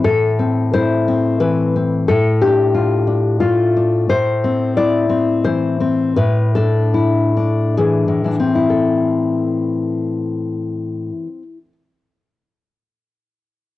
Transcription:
0.04 2.04 A2 soft
0.04 0.70 A4 medium
0.39 1.07 C4 soft
0.73 1.75 E4 soft
0.73 1.38 C5 medium
1.08 1.75 C4 soft
1.40 2.09 E3 soft
1.40 2.06 B4 medium
1.76 2.09 C4 soft
2.08 4.05 A2 medium
2.08 2.40 A4 medium
2.41 3.06 D4 soft
2.41 3.36 G4 medium
2.74 3.39 F4 soft
3.07 3.75 D4 soft
3.40 4.10 A3 soft
3.40 4.07 F4 medium
3.77 4.11 D4 soft
4.10 6.14 A2 soft
4.10 4.74 C5 medium
4.44 5.08 C4 soft
4.77 5.81 E4 soft
4.77 5.42 D5 medium
5.09 5.79 C4 soft
5.44 6.17 E3 soft
5.44 6.14 C5 medium
5.80 6.17 C4 soft
6.16 8.07 A2 medium
6.16 6.53 B4 medium
6.55 7.36 D4 soft
6.55 7.74 A4 medium
6.94 8.25 E4 soft
7.37 8.24 D4 soft
7.77 8.23 E3 soft
7.77 8.67 G#4 medium
8.08 11.10 A2 soft
8.24 11.27 E3 soft
8.24 8.39 D4 soft
8.40 11.42 C4 soft
8.55 11.58 E4 soft
8.70 11.72 A4 soft

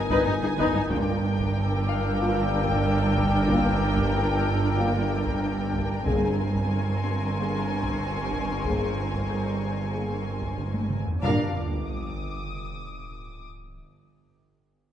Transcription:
0.00 0.86 G1 medium
0.00 0.73 B3 medium
0.00 0.73 D#4 medium
0.00 3.52 A#4 medium
0.00 0.87 G#5 medium
0.00 0.62 D6 medium
0.00 0.55 D#6 soft
0.10 0.16 G2 medium
0.10 0.26 D#4 medium
0.10 0.25 B4 medium
0.10 taiko medium
0.25 0.33 G1 medium
0.25 0.32 G2 medium
0.25 0.33 D#4 medium
0.42 0.48 G2 medium
0.42 0.50 D#4 medium
0.42 0.49 G#4 medium
0.57 0.65 G1 medium
0.57 0.64 G2 medium
0.57 0.74 D#4 medium
0.57 0.73 B4 medium
0.57 taiko medium
0.74 0.80 G2 medium
0.74 0.80 D#4 medium
0.74 0.82 D#4 medium
0.90 6.03 G1 medium
0.90 6.03 G2 medium
0.90 1.13 A#3 medium
0.90 6.04 D4 medium
0.90 1.13 F4 medium
0.90 6.02 A#4 medium
0.90 6.03 G5 medium
0.90 5.70 D6 medium
0.90 taiko medium
1.39 taiko medium
1.54 5.70 E6 medium
1.89 5.79 F5 medium
2.19 2.43 A#3 medium
2.19 2.43 F4 medium
2.19 5.70 F6 soft
2.68 taiko medium
3.16 taiko medium
3.48 3.71 A#3 medium
3.48 3.71 F4 medium
3.48 taiko medium
3.97 taiko medium
4.77 5.00 A#3 medium
4.77 5.00 F4 medium
5.26 taiko medium
5.74 taiko medium
6.06 10.99 G1 medium
6.06 11.19 G1 medium
6.06 10.99 G2 medium
6.06 7.00 G2 medium
6.06 6.29 A#3 soft
6.06 10.99 C4 soft
6.06 6.29 G#4 soft
6.06 10.99 A#4 medium
6.06 10.99 G#5 medium
6.06 10.87 C6 soft
6.06 taiko medium
6.55 taiko medium
6.71 10.86 C#6 soft
7.03 10.93 C4 soft
7.03 10.94 C6 soft
7.35 7.58 A#3 soft
7.35 7.58 G#4 soft
7.84 taiko medium
8.32 taiko medium
8.64 8.87 A#3 soft
8.64 8.87 G#4 soft
8.64 taiko medium
9.13 taiko medium
9.29 13.19 G#4 soft
9.29 13.20 G6 soft
9.92 10.15 A#3 soft
9.92 10.16 G#4 soft
10.42 taiko medium
10.58 taiko mid medium
10.74 taiko high medium
10.90 taiko mid medium
11.06 taiko low medium
11.22 11.59 G1 medium
11.22 11.59 G2 medium
11.22 11.53 G2 soft
11.22 11.51 A#3 soft
11.22 11.59 D4 soft
11.22 11.51 F4 soft
11.22 11.59 A#4 medium
11.22 11.59 F5 medium
11.22 13.44 D6 soft
11.22 taiko soft
11.22 sub drop soft
11.87 13.45 D#6 soft

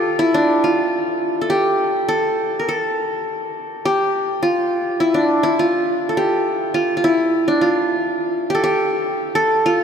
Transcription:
0.00 0.25 F4 medium
0.00 0.86 G4 medium
0.00 0.63 A4 medium
0.19 0.70 E4 medium
0.34 1.84 D4 medium
0.64 1.99 F4 medium
1.41 2.08 A4 medium
1.50 2.75 G4 medium
2.09 2.65 A4 medium
2.59 2.75 A#4 medium
2.69 3.86 A4 medium
3.85 5.11 G4 medium
4.43 5.06 F4 medium
5.00 5.43 E4 medium
5.14 6.64 D4 medium
5.43 5.65 E4 medium
5.59 6.74 F4 medium
6.09 7.26 A4 medium
6.17 7.43 G4 medium
6.74 6.96 F4 medium
6.97 7.10 F4 medium
7.04 7.67 E4 medium
7.48 8.97 D4 medium
7.61 8.96 F4 medium
8.50 8.63 G4 medium
8.55 9.35 A4 medium
8.64 9.84 G4 medium
9.35 9.84 A4 medium
9.66 9.84 F4 medium

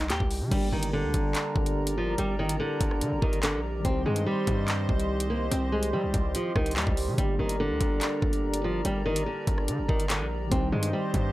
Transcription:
0.00 0.11 C2 loud
0.10 0.20 D#2 loud
0.10 0.49 G4 medium
0.10 clap loud
0.10 closed hi-hat medium
0.20 0.43 C2 loud
0.20 kick loud
0.31 open hi-hat medium
0.41 0.51 C3 loud
0.47 3.79 D3 medium
0.47 3.80 G3 medium
0.51 0.72 G1 loud
0.51 0.67 G3 medium
0.51 3.81 A#3 medium
0.51 3.82 D4 medium
0.51 10.48 G4 medium
0.51 3.82 A#4 medium
0.51 3.82 D5 medium
0.51 3.82 A#5 medium
0.51 kick loud
0.51 closed hi-hat medium
0.51 crash loud
0.57 3.84 G4 medium
0.72 1.05 G1 loud
0.72 0.88 D#3 medium
0.83 closed hi-hat medium
0.93 1.93 D3 medium
1.04 1.13 D2 loud
1.14 1.34 G1 loud
1.14 kick medium
1.14 closed hi-hat medium
1.35 clap loud
1.35 closed hi-hat medium
1.56 2.16 G1 loud
1.56 kick loud
1.66 closed hi-hat medium
1.87 closed hi-hat medium
1.98 2.13 F3 medium
2.18 2.51 G1 loud
2.18 2.34 G3 medium
2.18 closed hi-hat medium
2.39 2.55 D#3 medium
2.49 2.59 G#1 loud
2.49 closed hi-hat medium
2.60 3.19 D3 medium
2.81 3.03 G1 loud
2.81 kick medium
2.81 closed hi-hat medium
2.91 cross-stick medium
3.01 3.13 D3 loud
3.01 closed hi-hat medium
3.12 3.22 G1 loud
3.22 3.55 G1 loud
3.22 3.38 D#3 medium
3.22 kick loud
3.33 closed hi-hat medium
3.43 3.59 D3 medium
3.43 clap loud
3.43 closed hi-hat medium
3.54 3.83 A#1 loud
3.80 7.12 D#3 medium
3.80 7.13 G3 medium
3.85 4.05 C2 loud
3.85 4.01 C4 medium
3.85 7.14 C4 medium
3.85 7.16 D#4 medium
3.85 7.15 C5 medium
3.85 7.15 D#5 medium
3.85 7.15 C6 medium
3.85 kick loud
3.85 closed hi-hat medium
3.90 7.17 G4 medium
4.06 4.26 G2 loud
4.06 4.22 G#3 medium
4.16 closed hi-hat medium
4.26 5.27 G3 medium
4.47 4.87 G2 loud
4.47 kick medium
4.47 closed hi-hat medium
4.68 clap loud
4.68 closed hi-hat medium
4.89 5.49 C2 loud
4.89 kick loud
5.00 closed hi-hat medium
5.20 closed hi-hat medium
5.30 5.46 A#3 medium
5.51 5.95 C2 loud
5.51 5.67 C4 medium
5.51 closed hi-hat medium
5.72 5.88 G#3 medium
5.83 closed hi-hat medium
5.93 6.32 G3 medium
5.93 6.05 G3 loud
6.04 6.13 C2 loud
6.14 6.34 C2 loud
6.14 kick medium
6.14 closed hi-hat medium
6.35 6.51 F3 medium
6.35 closed hi-hat medium
6.56 6.78 C2 loud
6.56 6.72 D#3 medium
6.56 kick loud
6.56 cross-stick loud
6.66 closed hi-hat medium
6.71 closed hi-hat medium
6.76 6.86 D#2 loud
6.76 7.16 G3 medium
6.76 clap loud
6.76 closed hi-hat soft
6.82 closed hi-hat soft
6.87 7.09 C2 loud
6.87 kick loud
6.97 open hi-hat medium
7.08 7.18 C3 loud
7.14 10.45 D3 medium
7.14 10.46 G3 medium
7.18 7.38 G1 loud
7.18 7.34 G3 medium
7.18 10.48 A#3 medium
7.18 10.49 D4 medium
7.18 10.48 A#4 medium
7.18 10.48 D5 medium
7.18 10.48 A#5 medium
7.18 kick loud
7.18 closed hi-hat medium
7.23 10.50 G4 medium
7.39 7.72 G1 loud
7.39 7.55 D#3 medium
7.49 closed hi-hat medium
7.60 8.60 D3 medium
7.70 7.80 D2 loud
7.81 8.01 G1 loud
7.81 kick medium
7.81 closed hi-hat medium
8.01 clap loud
8.01 closed hi-hat medium
8.22 8.82 G1 loud
8.22 kick loud
8.33 closed hi-hat medium
8.54 closed hi-hat medium
8.64 8.80 F3 medium
8.85 9.18 G1 loud
8.85 9.01 G3 loud
8.85 closed hi-hat medium
9.06 9.22 D#3 loud
9.16 9.26 G#1 loud
9.16 closed hi-hat medium
9.26 9.85 D3 medium
9.47 9.70 G1 loud
9.47 kick medium
9.47 closed hi-hat medium
9.58 cross-stick medium
9.68 9.80 D3 loud
9.68 closed hi-hat medium
9.79 9.88 G1 loud
9.88 10.22 G1 loud
9.88 10.05 D#3 medium
9.88 kick loud
10.00 closed hi-hat medium
10.10 10.26 D3 medium
10.10 clap loud
10.10 closed hi-hat medium
10.20 10.50 A#1 loud
10.47 11.32 D#3 medium
10.47 11.32 G3 medium
10.51 10.72 C2 loud
10.51 10.67 C4 medium
10.51 11.32 C4 medium
10.51 11.32 D#4 medium
10.51 11.32 G4 medium
10.51 11.32 C5 medium
10.51 11.32 D#5 medium
10.51 11.32 C6 medium
10.51 kick loud
10.51 closed hi-hat medium
10.57 11.32 G4 medium
10.72 10.92 G2 loud
10.72 10.88 G#3 medium
10.83 closed hi-hat medium
10.93 11.32 G3 medium
11.14 11.32 G2 loud
11.14 kick medium
11.14 closed hi-hat medium

